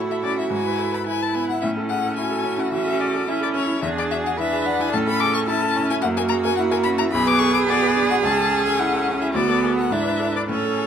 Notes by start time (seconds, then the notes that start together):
Already playing: A2 E4 F#4 G#4 A4
0.09 A4 E5
0.23 C#4 D5
0.37 E4 E5
0.50 G#2 E4 G#5
0.66 B4
0.79 A4
0.92 B4 B5
1.06 E4 G#5
1.21 B4 A5
1.34 B3 G#5
1.49 E4 F#5
1.62 A2 C#4 E5
1.77 A4
1.89 G#4 F#5
2.04 A4
2.16 E4 F#4 G#5
2.31 A4
2.44 C#4
2.58 E4 F#5
2.71 E3 C#4 E5
2.86 A4
3.00 G#4 D5
3.14 A4
3.27 C#4 E4 E5
3.41 A4 D5
3.55 C#4 C#5
3.67 E4
3.82 E2 D4 G#4 E5
3.97 G#4 D5
4.10 F#4 E5
4.24 G#4 F#5
4.38 D4 E4 B4 E5
4.53 G#4
4.66 D4 F#5
4.80 E4 G#5
4.93 A2 C#4 A4 A5
5.07 A4 B5
5.20 G#4 D6
5.34 A4 C#6
5.47 C#4 E4 A5
5.62 A4
5.76 C#4
5.90 E4 G#5
6.01 F#2 A#3 F#4 F#5
6.17 A#4 G#5
6.28 G#4 A#5
6.44 A#4 G#5
6.56 A#3 E4 F#5
6.71 A#4 G#5
6.83 C#4 B5
6.98 E4 A#5
7.11 B1 B3 G#4 B5
7.26 B4 D6
7.39 A4 C#6
7.54 B4 D6
7.67 B3 F#4 D5
7.82 B4
7.95 D4
8.10 F#4 F#5
8.23 C#2 C#4 A5
8.37 A4
8.52 G#4
8.65 A4 G#5
8.79 E4 F#5
8.94 A4
9.08 C#4
9.21 E4 E5
9.33 D2 B3 F#4 D5
9.48 A4
9.62 G#4
9.77 A4 F#5
9.90 G#2 D4 E4 E5
10.05 B4
10.20 A4
10.34 B4 D5
10.49 A2 C#4 A4 C#5
10.64 A4
10.78 G#4